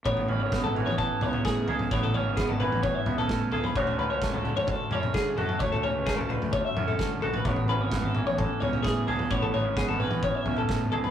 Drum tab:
SD |----o-------o---|----o-------o---|----o-------o---|----o-------o---|
T2 |-------oo-o----o|-------oo-o----o|-------oo-o----o|-------oo-o----o|
FT |ooo--oo-o-oo--o-|ooo--oo-o-oo--o-|ooo--oo-o-oo--o-|ooo--oo-o-oo--o-|
BD |o---o---o---o---|o---o---o---o---|o---o---o---o---|o---o---o---o---|

SD |----o-------o---|----o-------o---|
T2 |-------oo-o----o|-------oo-o----o|
FT |ooo--oo-o-oo--o-|ooo--oo-o-oo--o-|
BD |o---o---o---o---|o---o---o---o---|